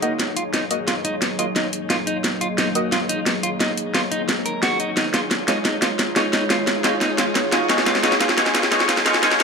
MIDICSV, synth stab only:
0, 0, Header, 1, 2, 480
1, 0, Start_track
1, 0, Key_signature, -6, "minor"
1, 0, Tempo, 340909
1, 1235, Time_signature, 4, 2, 24, 8
1, 13279, End_track
2, 0, Start_track
2, 0, Title_t, "Synth stab"
2, 0, Program_c, 0, 62
2, 33, Note_on_c, 0, 66, 83
2, 34, Note_on_c, 0, 58, 93
2, 34, Note_on_c, 0, 75, 102
2, 965, Note_off_c, 0, 66, 0
2, 965, Note_off_c, 0, 75, 0
2, 966, Note_off_c, 0, 58, 0
2, 995, Note_on_c, 0, 58, 84
2, 995, Note_on_c, 0, 66, 80
2, 995, Note_on_c, 0, 75, 93
2, 1098, Note_off_c, 0, 58, 0
2, 1099, Note_off_c, 0, 66, 0
2, 1099, Note_off_c, 0, 75, 0
2, 1957, Note_on_c, 0, 58, 76
2, 1957, Note_on_c, 0, 66, 71
2, 1957, Note_on_c, 0, 75, 83
2, 2059, Note_off_c, 0, 58, 0
2, 2059, Note_off_c, 0, 66, 0
2, 2059, Note_off_c, 0, 75, 0
2, 3876, Note_on_c, 0, 58, 91
2, 3876, Note_on_c, 0, 66, 84
2, 3876, Note_on_c, 0, 75, 104
2, 4807, Note_off_c, 0, 58, 0
2, 4807, Note_off_c, 0, 66, 0
2, 4807, Note_off_c, 0, 75, 0
2, 7715, Note_on_c, 0, 56, 86
2, 7715, Note_on_c, 0, 65, 78
2, 7716, Note_on_c, 0, 73, 94
2, 7936, Note_off_c, 0, 56, 0
2, 7936, Note_off_c, 0, 65, 0
2, 7936, Note_off_c, 0, 73, 0
2, 8675, Note_on_c, 0, 65, 79
2, 8675, Note_on_c, 0, 73, 94
2, 8676, Note_on_c, 0, 56, 87
2, 8896, Note_off_c, 0, 56, 0
2, 8896, Note_off_c, 0, 65, 0
2, 8896, Note_off_c, 0, 73, 0
2, 9635, Note_on_c, 0, 56, 91
2, 9635, Note_on_c, 0, 65, 81
2, 9635, Note_on_c, 0, 73, 97
2, 9856, Note_off_c, 0, 56, 0
2, 9856, Note_off_c, 0, 65, 0
2, 9856, Note_off_c, 0, 73, 0
2, 10594, Note_on_c, 0, 56, 94
2, 10594, Note_on_c, 0, 65, 82
2, 10594, Note_on_c, 0, 73, 101
2, 10815, Note_off_c, 0, 56, 0
2, 10816, Note_off_c, 0, 65, 0
2, 10816, Note_off_c, 0, 73, 0
2, 10834, Note_on_c, 0, 56, 92
2, 10834, Note_on_c, 0, 65, 82
2, 10834, Note_on_c, 0, 73, 102
2, 11295, Note_off_c, 0, 56, 0
2, 11295, Note_off_c, 0, 65, 0
2, 11295, Note_off_c, 0, 73, 0
2, 11313, Note_on_c, 0, 56, 94
2, 11313, Note_on_c, 0, 65, 85
2, 11313, Note_on_c, 0, 73, 101
2, 11775, Note_off_c, 0, 56, 0
2, 11775, Note_off_c, 0, 65, 0
2, 11775, Note_off_c, 0, 73, 0
2, 11794, Note_on_c, 0, 56, 92
2, 11794, Note_on_c, 0, 65, 83
2, 11794, Note_on_c, 0, 73, 101
2, 12255, Note_off_c, 0, 56, 0
2, 12255, Note_off_c, 0, 65, 0
2, 12255, Note_off_c, 0, 73, 0
2, 12275, Note_on_c, 0, 56, 98
2, 12275, Note_on_c, 0, 65, 87
2, 12275, Note_on_c, 0, 73, 105
2, 12736, Note_off_c, 0, 56, 0
2, 12736, Note_off_c, 0, 65, 0
2, 12736, Note_off_c, 0, 73, 0
2, 12754, Note_on_c, 0, 73, 101
2, 12755, Note_on_c, 0, 56, 95
2, 12755, Note_on_c, 0, 65, 88
2, 12975, Note_off_c, 0, 73, 0
2, 12976, Note_off_c, 0, 56, 0
2, 12976, Note_off_c, 0, 65, 0
2, 12994, Note_on_c, 0, 56, 96
2, 12994, Note_on_c, 0, 65, 88
2, 12994, Note_on_c, 0, 73, 105
2, 13215, Note_off_c, 0, 56, 0
2, 13215, Note_off_c, 0, 65, 0
2, 13215, Note_off_c, 0, 73, 0
2, 13234, Note_on_c, 0, 56, 97
2, 13234, Note_on_c, 0, 65, 88
2, 13234, Note_on_c, 0, 73, 104
2, 13279, Note_off_c, 0, 56, 0
2, 13279, Note_off_c, 0, 65, 0
2, 13279, Note_off_c, 0, 73, 0
2, 13279, End_track
0, 0, End_of_file